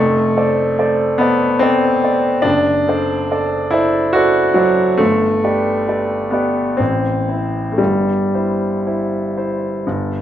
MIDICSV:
0, 0, Header, 1, 2, 480
1, 0, Start_track
1, 0, Key_signature, 0, "major"
1, 0, Tempo, 840336
1, 1406, Time_signature, 3, 2, 24, 8
1, 2372, Tempo, 864553
1, 3332, Tempo, 914634
1, 3812, Tempo, 1018676
1, 5423, End_track
2, 0, Start_track
2, 0, Title_t, "Grand piano"
2, 0, Program_c, 0, 0
2, 0, Note_on_c, 0, 29, 72
2, 0, Note_on_c, 0, 57, 91
2, 77, Control_c, 0, 64, 127
2, 204, Note_off_c, 0, 29, 0
2, 210, Note_on_c, 0, 69, 54
2, 211, Note_on_c, 0, 72, 50
2, 215, Note_on_c, 0, 74, 56
2, 429, Note_off_c, 0, 69, 0
2, 429, Note_off_c, 0, 72, 0
2, 431, Note_off_c, 0, 74, 0
2, 451, Note_on_c, 0, 69, 50
2, 451, Note_on_c, 0, 72, 53
2, 452, Note_on_c, 0, 74, 50
2, 668, Note_off_c, 0, 69, 0
2, 668, Note_off_c, 0, 72, 0
2, 669, Note_off_c, 0, 74, 0
2, 674, Note_on_c, 0, 59, 88
2, 682, Note_off_c, 0, 57, 0
2, 688, Note_on_c, 0, 69, 48
2, 692, Note_on_c, 0, 72, 48
2, 692, Note_on_c, 0, 74, 54
2, 904, Note_off_c, 0, 69, 0
2, 906, Note_off_c, 0, 72, 0
2, 906, Note_off_c, 0, 74, 0
2, 910, Note_on_c, 0, 60, 93
2, 920, Note_off_c, 0, 59, 0
2, 926, Note_on_c, 0, 69, 48
2, 927, Note_on_c, 0, 72, 51
2, 930, Note_on_c, 0, 74, 52
2, 1142, Note_off_c, 0, 69, 0
2, 1142, Note_off_c, 0, 72, 0
2, 1143, Note_off_c, 0, 74, 0
2, 1162, Note_on_c, 0, 69, 46
2, 1167, Note_on_c, 0, 72, 46
2, 1168, Note_on_c, 0, 74, 47
2, 1381, Note_off_c, 0, 69, 0
2, 1382, Note_on_c, 0, 62, 94
2, 1383, Note_off_c, 0, 72, 0
2, 1384, Note_off_c, 0, 74, 0
2, 1396, Note_off_c, 0, 60, 0
2, 1397, Note_on_c, 0, 30, 60
2, 1416, Control_c, 0, 64, 0
2, 1493, Control_c, 0, 64, 127
2, 1638, Note_off_c, 0, 30, 0
2, 1644, Note_on_c, 0, 69, 47
2, 1648, Note_on_c, 0, 72, 51
2, 1652, Note_on_c, 0, 74, 55
2, 1869, Note_off_c, 0, 69, 0
2, 1871, Note_off_c, 0, 72, 0
2, 1873, Note_off_c, 0, 74, 0
2, 1891, Note_on_c, 0, 69, 50
2, 1892, Note_on_c, 0, 72, 46
2, 1895, Note_on_c, 0, 74, 57
2, 2110, Note_off_c, 0, 69, 0
2, 2111, Note_off_c, 0, 72, 0
2, 2112, Note_off_c, 0, 74, 0
2, 2116, Note_on_c, 0, 64, 88
2, 2123, Note_off_c, 0, 62, 0
2, 2132, Note_on_c, 0, 69, 49
2, 2132, Note_on_c, 0, 72, 52
2, 2135, Note_on_c, 0, 74, 54
2, 2348, Note_off_c, 0, 69, 0
2, 2348, Note_off_c, 0, 72, 0
2, 2349, Note_off_c, 0, 74, 0
2, 2358, Note_on_c, 0, 66, 91
2, 2363, Note_off_c, 0, 64, 0
2, 2373, Note_on_c, 0, 69, 50
2, 2374, Note_on_c, 0, 72, 50
2, 2374, Note_on_c, 0, 74, 55
2, 2584, Note_off_c, 0, 69, 0
2, 2584, Note_off_c, 0, 74, 0
2, 2585, Note_off_c, 0, 72, 0
2, 2588, Note_on_c, 0, 54, 76
2, 2599, Note_off_c, 0, 66, 0
2, 2600, Note_on_c, 0, 69, 43
2, 2605, Note_on_c, 0, 72, 45
2, 2605, Note_on_c, 0, 74, 50
2, 2818, Note_off_c, 0, 69, 0
2, 2820, Note_off_c, 0, 72, 0
2, 2821, Note_off_c, 0, 74, 0
2, 2829, Note_on_c, 0, 57, 89
2, 2834, Note_off_c, 0, 54, 0
2, 2842, Note_on_c, 0, 31, 62
2, 2852, Control_c, 0, 64, 0
2, 2958, Control_c, 0, 64, 127
2, 3078, Note_off_c, 0, 31, 0
2, 3086, Note_on_c, 0, 67, 45
2, 3088, Note_on_c, 0, 71, 44
2, 3091, Note_on_c, 0, 74, 52
2, 3311, Note_off_c, 0, 67, 0
2, 3312, Note_off_c, 0, 71, 0
2, 3313, Note_off_c, 0, 74, 0
2, 3334, Note_on_c, 0, 67, 42
2, 3335, Note_on_c, 0, 71, 42
2, 3337, Note_on_c, 0, 74, 47
2, 3549, Note_off_c, 0, 67, 0
2, 3549, Note_off_c, 0, 71, 0
2, 3550, Note_off_c, 0, 74, 0
2, 3554, Note_on_c, 0, 59, 63
2, 3562, Note_off_c, 0, 57, 0
2, 3567, Note_on_c, 0, 67, 45
2, 3570, Note_on_c, 0, 71, 42
2, 3571, Note_on_c, 0, 74, 44
2, 3790, Note_off_c, 0, 67, 0
2, 3791, Note_off_c, 0, 71, 0
2, 3792, Note_off_c, 0, 74, 0
2, 3798, Note_on_c, 0, 60, 71
2, 3805, Note_off_c, 0, 59, 0
2, 3812, Note_on_c, 0, 33, 55
2, 3820, Control_c, 0, 64, 0
2, 3917, Control_c, 0, 64, 127
2, 4036, Note_off_c, 0, 33, 0
2, 4044, Note_on_c, 0, 64, 38
2, 4047, Note_on_c, 0, 72, 41
2, 4241, Note_off_c, 0, 60, 0
2, 4247, Note_on_c, 0, 57, 48
2, 4269, Note_off_c, 0, 64, 0
2, 4270, Note_off_c, 0, 72, 0
2, 4276, Note_on_c, 0, 55, 68
2, 4287, Note_off_c, 0, 57, 0
2, 4291, Note_on_c, 0, 31, 53
2, 4298, Control_c, 0, 64, 0
2, 4407, Control_c, 0, 64, 127
2, 4531, Note_off_c, 0, 31, 0
2, 4540, Note_on_c, 0, 64, 41
2, 4542, Note_on_c, 0, 72, 45
2, 4767, Note_off_c, 0, 64, 0
2, 4768, Note_off_c, 0, 72, 0
2, 4788, Note_on_c, 0, 64, 42
2, 4788, Note_on_c, 0, 72, 40
2, 5008, Note_off_c, 0, 64, 0
2, 5008, Note_off_c, 0, 72, 0
2, 5024, Note_on_c, 0, 64, 41
2, 5027, Note_on_c, 0, 72, 44
2, 5239, Note_off_c, 0, 64, 0
2, 5240, Note_off_c, 0, 72, 0
2, 5260, Note_on_c, 0, 31, 55
2, 5265, Control_c, 0, 64, 0
2, 5368, Control_c, 0, 64, 127
2, 5423, Note_off_c, 0, 31, 0
2, 5423, Note_off_c, 0, 55, 0
2, 5423, End_track
0, 0, End_of_file